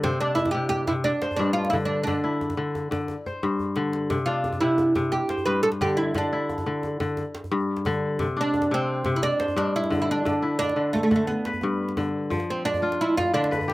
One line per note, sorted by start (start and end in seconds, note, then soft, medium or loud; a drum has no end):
0.00 0.53 C3 medium
0.00 0.19 C4 medium
0.00 0.38 C5 medium
0.00 djembe slap medium
0.00 djembe tone medium
0.00 djembe bass medium
0.21 0.35 D4 medium
0.21 1.89 D4 medium
0.35 0.51 E4 medium
0.35 djembe tone medium
0.45 djembe slap medium
0.45 djembe bass medium
0.51 0.87 C3 medium
0.51 0.68 G4 medium
0.51 djembe slap soft
0.69 0.87 G4 loud
0.69 djembe slap soft
0.69 djembe tone medium
0.87 1.10 C3 medium
0.87 0.92 E4 medium
0.87 djembe slap medium
0.87 djembe bass medium
1.04 1.35 D4 medium
1.04 djembe tone medium
1.22 2.41 C5 medium
1.22 djembe slap medium
1.31 djembe bass soft
1.36 2.12 G2 medium
1.36 1.53 D4 medium
1.36 djembe tone medium
1.53 1.69 F4 medium
1.65 djembe slap soft
1.70 2.06 D3 medium
1.70 1.75 E4 medium
1.70 djembe tone medium
1.70 djembe bass medium
1.82 2.02 D4 medium
1.82 djembe slap soft
2.03 3.37 D4 medium
2.03 djembe slap medium
2.03 djembe tone medium
2.03 djembe bass medium
2.08 2.56 D3 medium
2.24 3.80 E4 medium
2.33 djembe slap soft
2.41 djembe slap soft
2.41 djembe tone medium
2.50 djembe slap soft
2.50 djembe bass soft
2.57 2.90 D3 medium
2.75 djembe tone medium
2.83 djembe slap soft
2.91 3.13 D3 medium
2.91 djembe slap medium
2.91 djembe bass medium
3.01 djembe slap soft
3.08 djembe tone medium
3.26 4.45 C5 medium
3.26 djembe bass soft
3.43 4.15 G2 medium
3.43 djembe bass soft
3.60 djembe bass soft
3.76 4.15 D3 medium
3.76 djembe slap soft
3.93 djembe slap medium
4.10 4.61 C3 medium
4.10 djembe slap medium
4.10 djembe tone medium
4.10 djembe bass medium
4.26 5.95 D4 medium
4.26 4.58 F4 medium
4.44 djembe slap soft
4.44 djembe tone medium
4.53 djembe slap soft
4.53 djembe bass medium
4.61 4.95 C3 medium
4.61 4.93 E4 medium
4.78 djembe slap soft
4.78 djembe tone medium
4.95 5.17 C3 medium
4.95 djembe slap medium
4.95 djembe bass medium
5.12 5.45 G4 medium
5.12 djembe tone medium
5.29 6.49 C5 medium
5.29 djembe slap medium
5.38 djembe bass soft
5.46 6.20 G2 medium
5.46 5.63 B4 medium
5.46 djembe tone medium
5.63 5.68 A4 loud
5.72 djembe slap medium
5.81 6.14 D3 medium
5.81 5.99 G4 medium
5.81 djembe tone medium
5.81 djembe bass medium
5.89 djembe slap soft
5.97 6.15 E4 medium
6.14 6.65 D3 medium
6.14 6.81 D4 medium
6.14 djembe slap medium
6.14 djembe tone medium
6.14 djembe bass medium
6.33 7.89 E4 medium
6.49 djembe slap soft
6.49 djembe tone medium
6.58 djembe slap soft
6.58 djembe bass medium
6.66 6.99 D3 medium
6.83 djembe tone medium
7.00 7.22 D3 medium
7.00 djembe slap medium
7.00 djembe bass medium
7.17 djembe tone medium
7.35 djembe slap medium
7.44 djembe bass soft
7.51 8.25 G2 medium
7.60 djembe slap soft
7.77 djembe slap soft
7.85 8.25 D3 medium
7.85 djembe tone medium
7.85 djembe bass medium
7.93 djembe slap soft
8.19 8.70 C3 medium
8.19 djembe slap medium
8.19 djembe tone medium
8.19 djembe bass medium
8.37 10.05 D4 medium
8.41 8.71 D4 medium
8.54 djembe slap soft
8.54 djembe tone medium
8.62 djembe slap medium
8.62 djembe bass medium
8.71 9.04 C3 medium
8.71 9.14 C4 medium
8.71 djembe slap soft
8.87 djembe slap soft
9.05 9.27 C3 medium
9.05 djembe slap medium
9.05 djembe bass medium
9.16 9.23 E4 medium
9.22 9.56 D4 loud
9.22 djembe tone medium
9.40 10.58 C5 medium
9.40 djembe slap medium
9.48 djembe bass medium
9.56 10.30 G2 medium
9.56 9.75 D4 medium
9.56 djembe tone soft
9.76 10.00 E4 medium
9.84 djembe slap soft
9.90 10.24 D3 medium
9.90 djembe tone medium
9.90 djembe bass medium
10.01 10.08 E4 medium
10.01 djembe slap soft
10.11 10.58 D4 medium
10.25 10.75 D3 medium
10.25 djembe slap medium
10.25 djembe tone medium
10.25 djembe bass medium
10.42 11.99 E4 medium
10.42 djembe slap soft
10.59 10.94 D4 medium
10.59 djembe tone medium
10.69 djembe slap soft
10.76 11.10 D3 medium
10.93 11.02 A3 medium
10.93 djembe slap soft
10.93 djembe tone medium
11.03 11.15 A3 medium
11.11 11.33 D3 medium
11.11 djembe slap medium
11.11 djembe bass medium
11.16 11.27 A3 medium
11.20 djembe slap soft
11.27 12.09 B3 medium
11.27 djembe tone medium
11.45 12.69 B4 medium
11.45 djembe slap medium
11.53 djembe bass soft
11.61 12.36 G2 medium
11.61 djembe slap soft
11.61 djembe tone medium
11.89 djembe slap soft
11.97 12.36 D3 medium
11.97 djembe tone medium
11.97 djembe bass medium
12.24 djembe slap soft
12.30 13.39 F3 medium
12.30 djembe tone medium
12.30 djembe bass medium
12.40 djembe slap soft
12.50 12.65 C4 medium
12.65 13.00 D4 medium
12.65 djembe slap medium
12.74 djembe tone medium
12.74 djembe bass medium
12.82 13.74 F4 medium
12.92 djembe slap medium
13.01 13.17 E4 medium
13.10 djembe slap soft
13.17 13.34 F4 medium
13.17 djembe slap medium
13.17 djembe bass medium
13.34 13.74 D3 medium
13.34 13.50 D4 medium
13.44 djembe slap medium
13.51 13.74 B4 medium
13.51 djembe tone medium
13.61 djembe bass medium
13.68 13.74 G4 medium
13.68 djembe slap medium